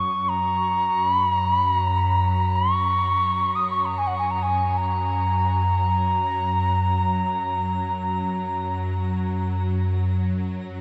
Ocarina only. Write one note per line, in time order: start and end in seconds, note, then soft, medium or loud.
0.00 0.30 C#6 medium
0.29 1.09 A#5 medium
1.09 1.31 B5 medium
1.31 1.54 A#5 medium
1.54 1.76 B5 medium
1.76 2.57 A#5 medium
2.56 3.57 C#6 medium
3.55 3.70 D#6 medium
3.71 3.79 C#6 medium
3.79 3.87 C#6 medium
3.85 3.99 A#5 medium
3.98 4.08 G#5 medium
4.07 4.17 F#5 medium
4.18 4.32 G#5 medium
4.30 4.44 A#5 medium
4.42 4.79 G#5 medium
4.77 8.78 A#5 medium